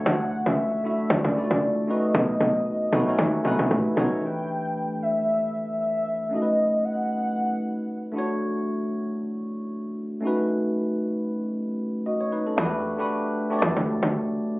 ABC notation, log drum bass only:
X:1
M:4/4
L:1/16
Q:"Swing 16ths" 1/4=115
K:Edor
V:1 name="Log drum bass" clef=bass
D,,3 C,,3 z2 D,, C,,2 C,, z4 | B,,,2 B,,,4 B,,,2 ^D,, z B,,, B,,, A,,, z B,,, z | z16 | z16 |
z16 | z16 | E,,3 D,,3 z2 E,, D,,2 D,, z4 |]